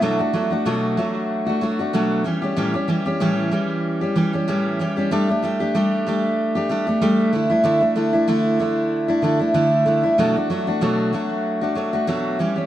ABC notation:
X:1
M:4/4
L:1/16
Q:"Swing 16ths" 1/4=95
K:Bm
V:1 name="Steel-string acoustic guitar"
[B,,F,A,DF] [A,DF] [F,A,DF] [A,DF] [B,,F,A,DF]2 [F,A,DF]3 [A,DF] [F,A,DF] [A,DF] [B,,F,A,DF]2 [E,G,CG] [G,CG] | [A,,E,G,CG] [G,CG] [E,G,CG] [G,CG] [A,,E,G,CG]2 [E,G,CG]3 [G,CG] [E,G,CG] [G,CG] [A,,E,G,CG]2 [E,G,CG] [G,CG] | [G,A,DG] [A,DG] [G,A,DG] [A,DG] [G,A,DG]2 [G,A,DG]3 [A,DG] [G,A,DG] [A,DG] [G,A,DG]2 [D,A,DE] [A,DE] | [D,A,DE] [A,DE] [D,A,DE] [A,DE] [D,A,DE]2 [D,A,DE]3 [A,DE] [D,A,DE] [A,DE] [D,A,DE]2 [D,A,DE] [A,DE] |
[B,,F,A,DF] [A,DF] [F,A,DF] [A,DF] [B,,F,A,DF]2 [F,A,DF]3 [A,DF] [F,A,DF] [A,DF] [B,,F,A,DF]2 [E,G,CG] [G,CG] |]